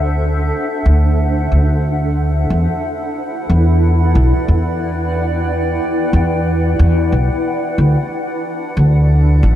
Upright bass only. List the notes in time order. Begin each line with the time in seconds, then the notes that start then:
Already playing: D2
0.86 D2
1.52 D2
2.50 E2
3.50 E2
4.15 B1
4.48 E2
6.13 E2
6.79 E2
7.12 B1
7.78 D2
8.77 D2
9.43 A1